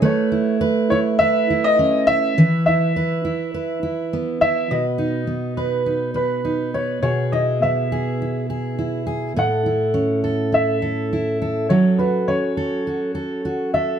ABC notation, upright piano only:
X:1
M:4/4
L:1/16
Q:"Swing 16ths" 1/4=103
K:E
V:1 name="Upright piano"
c4 z2 c2 e3 d3 e2- | e2 e12 e2 | d6 B4 B4 c2 | c2 d2 e8- e2 z2 |
f8 e8 | c2 B2 c8- c2 e2 |]